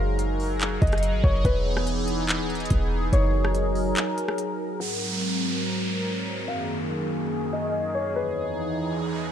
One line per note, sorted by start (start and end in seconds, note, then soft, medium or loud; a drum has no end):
0.00 0.78 F#1 loud
0.00 1.43 F#3 medium
0.00 4.76 D#4 medium
0.00 4.76 G#4 medium
0.00 1.41 A#4 medium
0.00 1.43 F5 loud
0.19 closed hi-hat medium
0.40 open hi-hat medium
0.61 clap loud
0.61 closed hi-hat medium
0.81 1.15 F#1 loud
0.81 2.60 D#5 medium
0.81 kick loud
0.81 closed hi-hat soft
0.87 closed hi-hat soft
0.92 cross-stick loud
0.92 closed hi-hat medium
0.98 closed hi-hat medium
1.03 closed hi-hat medium
1.13 1.23 G#1 loud
1.23 1.44 F#1 loud
1.23 3.13 C#5 medium
1.23 kick loud
1.45 2.41 E1 loud
1.45 3.11 E3 medium
1.45 3.11 B3 medium
1.45 3.50 B4 loud
1.45 kick loud
1.45 closed hi-hat medium
1.77 cross-stick loud
1.87 closed hi-hat medium
2.08 closed hi-hat medium
2.29 clap loud
2.29 closed hi-hat medium
2.39 2.57 D#1 loud
2.50 closed hi-hat soft
2.55 2.70 E1 loud
2.55 closed hi-hat medium
2.60 closed hi-hat medium
2.65 closed hi-hat medium
2.70 3.11 E1 loud
2.70 kick loud
2.70 closed hi-hat medium
3.13 3.93 F#1 loud
3.13 4.79 F#3 medium
3.13 4.79 A#4 medium
3.13 5.04 C#5 medium
3.13 closed hi-hat medium
3.45 cross-stick loud
3.55 closed hi-hat medium
3.75 open hi-hat medium
3.97 clap loud
3.97 closed hi-hat medium
4.18 closed hi-hat medium
4.28 cross-stick loud
4.38 closed hi-hat medium
4.80 6.47 G#2 medium
4.80 6.47 F#3 medium
4.80 6.47 C4 medium
4.80 6.47 A#4 medium
4.80 6.44 F#5 medium
4.80 downlifter medium
6.48 8.15 F#2 medium
6.48 8.15 D#3 medium
6.48 8.15 A#3 medium
6.48 9.32 G#4 medium
6.48 8.14 F5 loud
7.53 9.31 D#5 medium
7.95 9.32 C#5 medium
8.16 9.32 E2 medium
8.16 9.32 E3 medium
8.16 9.32 D#4 medium
8.16 9.32 B4 medium
8.16 noise sweep medium